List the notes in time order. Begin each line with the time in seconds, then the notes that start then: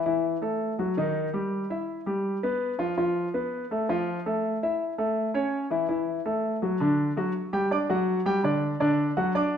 0.06 E3 E4
0.42 A3 A4
0.79 F#3 F#4
0.97 D#3 D#4
1.33 G3 G4
1.70 E4 E5
2.06 G3 G4
2.43 B3 B4
2.79 F3 F4
2.97 F3 F4
3.34 B3 B4
3.71 A3 A4
3.89 F3 F4
4.26 A3 A4
4.63 E4 E5
4.98 A3 A4
5.34 C#4 C#5
5.70 E3 E4
5.88 E3 E4
6.26 A3 A4
6.62 F#3 F#4
6.80 D3 D4
7.17 F#3 F#4
7.53 G3 G4 G5
7.71 D4 D5 D6
7.90 F#3 F#4 F#5
8.26 G3 G4 G5
8.43 D3 D4 D5
8.80 D3 D4 D5
9.17 F#3 F#4 F#5
9.35 D4 D5 D6